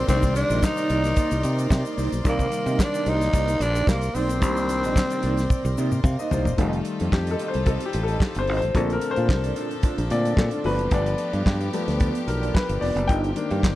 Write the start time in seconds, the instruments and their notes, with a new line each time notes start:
Already playing: string section A#4 C5 D5 C6
0.07 fingered electric bass C2, grand piano C3 D#3 G3 A#3 D5, clean electric guitar A#3 D#4 G4 D5, tenor saxophone C4, kick, closed hi-hat, shaker
0.22 muted clean electric guitar stroke, kick, closed hi-hat, shaker
0.36 tenor saxophone D4, closed hi-hat, shaker
0.49 fingered electric bass A#1, clean electric guitar A#3 D#4 G4 D#5, closed hi-hat, shaker
0.63 tenor saxophone D#4, muted clean electric guitar stroke, kick, snare, clap, shaker
0.77 clean electric guitar A#3 D#4 G4 D5, closed hi-hat, shaker
0.90 fingered electric bass C2, clean electric guitar A#3 D#4 G4 D5, closed hi-hat
1.04 muted clean electric guitar stroke, snare, closed hi-hat, shaker
1.16 clean electric guitar A#3 D#4 G4 D5, kick, closed hi-hat, shaker
1.31 fingered electric bass C2, muted clean electric guitar stroke, closed hi-hat, shaker
1.43 fingered electric bass C3, closed hi-hat, shaker
1.58 clean electric guitar A#3 D#4 G4 D5, closed hi-hat, shaker
1.70 fingered electric bass C3, muted clean electric guitar stroke, kick, snare, clap, shaker
1.85 clean electric guitar A#3 D#4 G4 D#5, closed hi-hat, shaker
1.97 fingered electric bass C2, clean electric guitar A#3 D#4 G4 D5, open hi-hat, shaker
2.12 fingered electric bass B1, muted clean electric guitar stroke, closed hi-hat, shaker
2.24 fingered electric bass C2, grand piano C3 D#3 G3 A#3 D5, clean electric guitar A#3 D#4 G4 D5, kick, closed hi-hat, shaker
2.29 tenor saxophone A#3
2.39 kick, closed hi-hat, shaker
2.52 muted clean electric guitar stroke, closed hi-hat, shaker
2.66 fingered electric bass C3, clean electric guitar A#3 D#4 G4 D#5, closed hi-hat, shaker
2.79 tenor saxophone D4, muted clean electric guitar stroke, kick, snare, clap, shaker
2.93 clean electric guitar A#3 D#4 G4 D5, closed hi-hat, shaker
3.06 fingered electric bass C2, clean electric guitar A#3 D#4 G4 D5, tenor saxophone D#4, closed hi-hat
3.21 muted clean electric guitar stroke, snare, closed hi-hat, shaker
3.33 fingered electric bass C2, clean electric guitar A#3 D#4 G4 D5, kick, closed hi-hat, shaker
3.48 muted clean electric guitar stroke, closed hi-hat, shaker
3.60 fingered electric bass A#1, tenor saxophone D4, closed hi-hat, shaker
3.75 clean electric guitar A#3 D#4 G4 D5, closed hi-hat, shaker
3.87 fingered electric bass C2, tenor saxophone A#3, kick, snare, clap, shaker
4.01 muted clean electric guitar stroke, closed hi-hat, shaker
4.15 fingered electric bass B1, clean electric guitar A#3 D#4 G4 D5, tenor saxophone C4, open hi-hat, shaker
4.29 muted clean electric guitar stroke, closed hi-hat, shaker
4.40 fingered electric bass C2, grand piano C3 D#3 G3 A#3 D4, clean electric guitar A#3 D#4 G4 D5, kick, closed hi-hat, shaker
4.57 muted clean electric guitar stroke, closed hi-hat, shaker
4.69 muted clean electric guitar stroke, closed hi-hat, shaker
4.83 fingered electric bass A#1, clean electric guitar A#3 D#4 G4 D#5, closed hi-hat, shaker
4.96 muted clean electric guitar stroke, kick, snare, clap, shaker
5.10 clean electric guitar A#3 D#4 G4 D5, closed hi-hat, shaker
5.23 fingered electric bass C2, clean electric guitar A#3 D#4 G4 D5, closed hi-hat
5.37 muted clean electric guitar stroke, snare, closed hi-hat, shaker
5.50 kick, high tom, shaker
5.65 fingered electric bass C2, muted clean electric guitar stroke, high tom, shaker
5.78 fingered electric bass C3, clean electric guitar A#3 D#4 G4 D5, shaker
5.92 muted clean electric guitar stroke, mid tom, shaker
6.04 fingered electric bass C3, grand piano F5, muted clean electric guitar stroke, kick, mid tom, shaker
6.19 clean electric guitar A#3 D#4 G4 D#5, grand piano D#5, shaker
6.31 fingered electric bass C2, clean electric guitar A#3 D#4 G4 D5, grand piano C5, floor tom, shaker
6.45 fingered electric bass E1, muted clean electric guitar stroke, floor tom, shaker
6.57 fingered electric bass F1, grand piano D#3 G3 A3, string section G3 D#4 F4 A4, clean electric guitar C4 G4 A4 D#5, kick, closed hi-hat
6.73 muted clean electric guitar stroke, closed hi-hat
6.85 muted clean electric guitar stroke, closed hi-hat
7.00 fingered electric bass F2, clean electric guitar C4 G4 A4 F5, closed hi-hat
7.12 fingered electric bass F2, grand piano G4, muted clean electric guitar stroke, kick, snare, clap
7.27 clean electric guitar C4 G4 A4 D#5, closed hi-hat
7.31 grand piano A4
7.39 clean electric guitar C4 G4 A4 D#5, closed hi-hat
7.48 grand piano C5
7.54 fingered electric bass C2, muted clean electric guitar stroke, closed hi-hat
7.66 clean electric guitar C4 G4 A4 D#5, grand piano A4, kick, closed hi-hat
7.81 muted clean electric guitar stroke, closed hi-hat
7.86 grand piano G4
7.93 fingered electric bass A1, muted clean electric guitar stroke, closed hi-hat
8.03 grand piano A4
8.08 clean electric guitar C4 G4 A4 D#5, closed hi-hat
8.20 muted clean electric guitar stroke, kick, snare, clap
8.35 fingered electric bass G1, clean electric guitar C4 G4 A4 F5, grand piano C5, closed hi-hat
8.47 fingered electric bass G#1, clean electric guitar C4 G4 A4 D#5, open hi-hat
8.57 grand piano C5
8.62 fingered electric bass A1, muted clean electric guitar stroke, closed hi-hat
8.74 fingered electric bass A#1, string section A#2 F3 D4 A4, grand piano D3 A3 C4 A4, clean electric guitar D4 F4 A4 D5, kick, closed hi-hat
8.89 grand piano A#4, muted clean electric guitar stroke, closed hi-hat
9.01 muted clean electric guitar stroke, closed hi-hat
9.11 grand piano C5
9.16 fingered electric bass A#2, clean electric guitar D4 F4 A4 F5, closed hi-hat
9.29 fingered electric bass C2, kick, snare, clap
9.44 clean electric guitar D4 F4 A4 D5, closed hi-hat
9.55 clean electric guitar D4 F4 A4 D5, closed hi-hat
9.71 muted clean electric guitar stroke, closed hi-hat
9.83 clean electric guitar D4 F4 A4 D5, kick, closed hi-hat
9.97 fingered electric bass A#1, muted clean electric guitar stroke, closed hi-hat
10.10 fingered electric bass A#2, grand piano D3 A3 C4 D5, muted clean electric guitar stroke, closed hi-hat
10.25 clean electric guitar D4 F4 A4 D5, closed hi-hat
10.37 fingered electric bass A#2, grand piano A4, kick, snare, clap
10.50 clean electric guitar D4 F4 A4 F5, closed hi-hat
10.63 fingered electric bass G1, grand piano F3 A3 B3 B4, clean electric guitar B3 F4 G4 D5, string section B3 G4, open hi-hat
10.78 fingered electric bass F#1, muted clean electric guitar stroke, closed hi-hat
10.90 fingered electric bass G1, clean electric guitar B3 F4 G4 D5, grand piano D5, kick, closed hi-hat
11.05 muted clean electric guitar stroke, closed hi-hat
11.18 muted clean electric guitar stroke, closed hi-hat
11.32 fingered electric bass G2, clean electric guitar B3 F4 G4 F5, closed hi-hat
11.45 fingered electric bass G2, muted clean electric guitar stroke, kick, snare, clap
11.60 clean electric guitar B3 F4 G4 D5, closed hi-hat
11.73 grand piano F3 A3 B3, clean electric guitar B3 F4 G4 D5, closed hi-hat
11.87 fingered electric bass D2, muted clean electric guitar stroke, snare, closed hi-hat
12.00 clean electric guitar B3 F4 G4 D5, kick, closed hi-hat
12.15 muted clean electric guitar stroke, closed hi-hat
12.27 fingered electric bass B1, grand piano A#4, muted clean electric guitar stroke, closed hi-hat
12.42 clean electric guitar B3 F4 G4 D5, closed hi-hat
12.54 grand piano B4, muted clean electric guitar stroke, kick, snare, clap
12.69 fingered electric bass G1, clean electric guitar B3 F4 G4 F5, closed hi-hat
12.81 fingered electric bass F1, clean electric guitar B3 F4 G4 D5, grand piano D5, open hi-hat
12.96 fingered electric bass F#1, muted clean electric guitar stroke, closed hi-hat
13.08 fingered electric bass G1, string section D#3 A#3 C4 G4, clean electric guitar D#4 G4 A#4 D#5, grand piano G5, kick, closed hi-hat
13.23 muted clean electric guitar stroke, closed hi-hat
13.35 grand piano D#3 A#3 D4, muted clean electric guitar stroke, closed hi-hat
13.50 fingered electric bass G2, clean electric guitar D#4 G4 A#4 F5, closed hi-hat
13.63 fingered electric bass G1, muted clean electric guitar stroke, kick, snare, clap